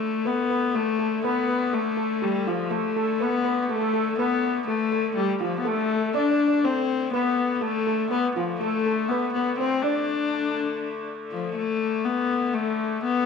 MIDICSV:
0, 0, Header, 1, 4, 480
1, 0, Start_track
1, 0, Tempo, 491763
1, 1199, Time_signature, 3, 2, 24, 8
1, 12940, End_track
2, 0, Start_track
2, 0, Title_t, "Steel pan"
2, 0, Program_c, 0, 114
2, 0, Note_on_c, 0, 69, 66
2, 207, Note_off_c, 0, 69, 0
2, 249, Note_on_c, 0, 71, 63
2, 479, Note_off_c, 0, 71, 0
2, 490, Note_on_c, 0, 71, 62
2, 730, Note_on_c, 0, 69, 61
2, 731, Note_off_c, 0, 71, 0
2, 957, Note_off_c, 0, 69, 0
2, 969, Note_on_c, 0, 69, 65
2, 1211, Note_off_c, 0, 69, 0
2, 1215, Note_on_c, 0, 71, 78
2, 1430, Note_off_c, 0, 71, 0
2, 1452, Note_on_c, 0, 71, 62
2, 1690, Note_on_c, 0, 69, 68
2, 1692, Note_off_c, 0, 71, 0
2, 1908, Note_off_c, 0, 69, 0
2, 1926, Note_on_c, 0, 69, 60
2, 2167, Note_on_c, 0, 67, 56
2, 2169, Note_off_c, 0, 69, 0
2, 2409, Note_off_c, 0, 67, 0
2, 2413, Note_on_c, 0, 65, 64
2, 2641, Note_on_c, 0, 69, 78
2, 2653, Note_off_c, 0, 65, 0
2, 2883, Note_off_c, 0, 69, 0
2, 2895, Note_on_c, 0, 69, 65
2, 3127, Note_on_c, 0, 71, 70
2, 3133, Note_off_c, 0, 69, 0
2, 3351, Note_off_c, 0, 71, 0
2, 3363, Note_on_c, 0, 71, 66
2, 3604, Note_on_c, 0, 69, 64
2, 3608, Note_off_c, 0, 71, 0
2, 3659, Note_off_c, 0, 69, 0
2, 3671, Note_on_c, 0, 69, 60
2, 3713, Note_off_c, 0, 69, 0
2, 3724, Note_on_c, 0, 69, 72
2, 3829, Note_off_c, 0, 69, 0
2, 3841, Note_on_c, 0, 69, 74
2, 4087, Note_off_c, 0, 69, 0
2, 4092, Note_on_c, 0, 71, 76
2, 4320, Note_off_c, 0, 71, 0
2, 4331, Note_on_c, 0, 71, 62
2, 4568, Note_on_c, 0, 69, 66
2, 4572, Note_off_c, 0, 71, 0
2, 4794, Note_off_c, 0, 69, 0
2, 4805, Note_on_c, 0, 69, 63
2, 5049, Note_off_c, 0, 69, 0
2, 5049, Note_on_c, 0, 67, 64
2, 5278, Note_on_c, 0, 65, 65
2, 5290, Note_off_c, 0, 67, 0
2, 5513, Note_on_c, 0, 69, 77
2, 5525, Note_off_c, 0, 65, 0
2, 5998, Note_on_c, 0, 74, 75
2, 6010, Note_off_c, 0, 69, 0
2, 6149, Note_off_c, 0, 74, 0
2, 6160, Note_on_c, 0, 74, 60
2, 6311, Note_off_c, 0, 74, 0
2, 6323, Note_on_c, 0, 74, 70
2, 6484, Note_on_c, 0, 72, 69
2, 6485, Note_off_c, 0, 74, 0
2, 6964, Note_on_c, 0, 71, 80
2, 6975, Note_off_c, 0, 72, 0
2, 7430, Note_on_c, 0, 69, 69
2, 7455, Note_off_c, 0, 71, 0
2, 7669, Note_off_c, 0, 69, 0
2, 7681, Note_on_c, 0, 69, 68
2, 7918, Note_on_c, 0, 71, 70
2, 7926, Note_off_c, 0, 69, 0
2, 8163, Note_on_c, 0, 65, 72
2, 8165, Note_off_c, 0, 71, 0
2, 8405, Note_on_c, 0, 69, 75
2, 8407, Note_off_c, 0, 65, 0
2, 8625, Note_off_c, 0, 69, 0
2, 8650, Note_on_c, 0, 69, 62
2, 8891, Note_off_c, 0, 69, 0
2, 8896, Note_on_c, 0, 71, 73
2, 9129, Note_off_c, 0, 71, 0
2, 9141, Note_on_c, 0, 71, 61
2, 9372, Note_on_c, 0, 72, 67
2, 9376, Note_off_c, 0, 71, 0
2, 9604, Note_on_c, 0, 74, 71
2, 9611, Note_off_c, 0, 72, 0
2, 10761, Note_off_c, 0, 74, 0
2, 12940, End_track
3, 0, Start_track
3, 0, Title_t, "Viola da gamba"
3, 0, Program_c, 1, 42
3, 0, Note_on_c, 1, 57, 81
3, 257, Note_on_c, 1, 59, 79
3, 272, Note_off_c, 1, 57, 0
3, 736, Note_on_c, 1, 57, 78
3, 750, Note_off_c, 1, 59, 0
3, 1207, Note_off_c, 1, 57, 0
3, 1222, Note_on_c, 1, 59, 81
3, 1699, Note_on_c, 1, 57, 78
3, 1714, Note_off_c, 1, 59, 0
3, 2177, Note_on_c, 1, 55, 80
3, 2192, Note_off_c, 1, 57, 0
3, 2414, Note_on_c, 1, 53, 71
3, 2429, Note_off_c, 1, 55, 0
3, 2648, Note_on_c, 1, 57, 78
3, 2663, Note_off_c, 1, 53, 0
3, 3144, Note_on_c, 1, 59, 89
3, 3159, Note_off_c, 1, 57, 0
3, 3533, Note_off_c, 1, 59, 0
3, 3533, Note_on_c, 1, 59, 56
3, 3616, Note_on_c, 1, 57, 86
3, 3631, Note_off_c, 1, 59, 0
3, 4077, Note_off_c, 1, 57, 0
3, 4082, Note_on_c, 1, 59, 85
3, 4527, Note_off_c, 1, 59, 0
3, 4563, Note_on_c, 1, 57, 85
3, 5007, Note_off_c, 1, 57, 0
3, 5038, Note_on_c, 1, 55, 77
3, 5261, Note_off_c, 1, 55, 0
3, 5296, Note_on_c, 1, 53, 75
3, 5448, Note_off_c, 1, 53, 0
3, 5458, Note_on_c, 1, 59, 60
3, 5540, Note_on_c, 1, 57, 94
3, 5554, Note_off_c, 1, 59, 0
3, 6009, Note_off_c, 1, 57, 0
3, 6017, Note_on_c, 1, 62, 95
3, 6488, Note_on_c, 1, 60, 91
3, 6503, Note_off_c, 1, 62, 0
3, 6955, Note_off_c, 1, 60, 0
3, 6961, Note_on_c, 1, 59, 87
3, 7372, Note_off_c, 1, 59, 0
3, 7372, Note_on_c, 1, 59, 59
3, 7437, Note_on_c, 1, 57, 85
3, 7451, Note_off_c, 1, 59, 0
3, 7908, Note_off_c, 1, 57, 0
3, 7914, Note_on_c, 1, 59, 83
3, 8139, Note_off_c, 1, 59, 0
3, 8162, Note_on_c, 1, 53, 65
3, 8383, Note_off_c, 1, 53, 0
3, 8404, Note_on_c, 1, 57, 88
3, 8870, Note_on_c, 1, 59, 77
3, 8884, Note_off_c, 1, 57, 0
3, 9103, Note_off_c, 1, 59, 0
3, 9109, Note_on_c, 1, 59, 82
3, 9336, Note_off_c, 1, 59, 0
3, 9357, Note_on_c, 1, 60, 86
3, 9584, Note_on_c, 1, 62, 85
3, 9599, Note_off_c, 1, 60, 0
3, 10790, Note_off_c, 1, 62, 0
3, 11042, Note_on_c, 1, 53, 64
3, 11263, Note_off_c, 1, 53, 0
3, 11283, Note_on_c, 1, 57, 83
3, 11757, Note_on_c, 1, 59, 81
3, 11771, Note_off_c, 1, 57, 0
3, 12239, Note_on_c, 1, 57, 82
3, 12254, Note_off_c, 1, 59, 0
3, 12718, Note_off_c, 1, 57, 0
3, 12727, Note_on_c, 1, 59, 86
3, 12940, Note_off_c, 1, 59, 0
3, 12940, End_track
4, 0, Start_track
4, 0, Title_t, "Hurdy-gurdy"
4, 0, Program_c, 2, 110
4, 0, Note_on_c, 2, 50, 62
4, 0, Note_on_c, 2, 57, 67
4, 5501, Note_off_c, 2, 57, 0
4, 5501, Note_on_c, 2, 57, 63
4, 5502, Note_off_c, 2, 50, 0
4, 5502, Note_on_c, 2, 50, 59
4, 11268, Note_off_c, 2, 50, 0
4, 11268, Note_on_c, 2, 50, 70
4, 11279, Note_off_c, 2, 57, 0
4, 11279, Note_on_c, 2, 57, 65
4, 12940, Note_off_c, 2, 50, 0
4, 12940, Note_off_c, 2, 57, 0
4, 12940, End_track
0, 0, End_of_file